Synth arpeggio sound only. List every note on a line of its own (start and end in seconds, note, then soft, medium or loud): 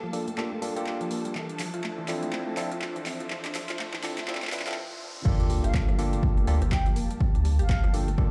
0.03 0.07 F3 loud
0.13 0.22 D4 medium
0.28 0.31 A3 medium
0.38 0.43 A3 medium
0.52 0.58 A3 medium
0.62 0.70 G3 medium
0.76 0.85 G4 loud
0.86 0.91 G4 medium
1.01 1.04 F3 loud
1.11 1.16 A#3 medium
1.25 1.34 G3 medium
1.35 1.40 E3 medium
1.49 1.58 D4 medium
1.59 1.68 F3 medium
1.74 1.83 F4 loud
1.84 1.92 A3 loud
1.98 2.02 E3 loud
2.08 2.17 D4 medium
2.23 2.26 A3 medium
2.33 2.38 A3 medium
2.47 2.53 A3 medium
2.57 2.66 F3 medium
2.71 2.80 F4 loud
2.82 2.87 F4 medium
2.96 2.99 E3 loud
3.06 3.11 C4 medium
3.20 3.29 F3 medium
3.30 3.35 E3 medium
3.45 3.53 D4 medium
3.55 3.63 F3 medium
3.69 3.78 F4 loud
3.79 3.87 A3 loud
3.93 3.97 E3 loud
4.03 4.12 D4 medium
4.18 4.21 A3 medium
4.28 4.33 A3 medium
4.42 4.48 A3 medium
4.52 4.61 F3 medium
4.67 4.75 F4 loud
5.25 5.30 F3 medium
5.40 5.49 D4 medium
5.50 5.58 G3 medium
5.64 5.73 G4 loud
5.74 5.83 A3 loud
5.88 5.92 F3 loud
5.99 6.07 D4 medium
6.13 6.16 A3 medium
6.23 6.28 A3 medium
6.37 6.43 A3 medium
6.47 6.56 G3 medium
6.62 6.71 G4 loud
6.72 6.77 G4 medium
6.86 6.90 F3 loud
6.96 7.01 A#3 medium
7.11 7.19 G3 medium
7.21 7.26 F3 medium
7.35 7.44 D4 medium
7.45 7.53 G3 medium
7.59 7.68 G4 loud
7.69 7.78 A3 loud
7.84 7.87 F3 loud
7.94 8.02 D4 medium
8.08 8.12 A3 medium
8.18 8.23 A3 medium